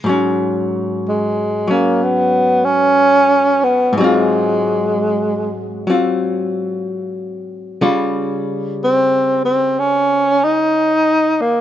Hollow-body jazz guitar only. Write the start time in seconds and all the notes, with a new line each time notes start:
0.04 G#2 F#3
0.09 C#4
1.68 F#3 C#4
3.93 G#2
3.98 F#3 C4
4.04 F4
5.87 F#3 C4 F4
7.81 C#3 G3 F4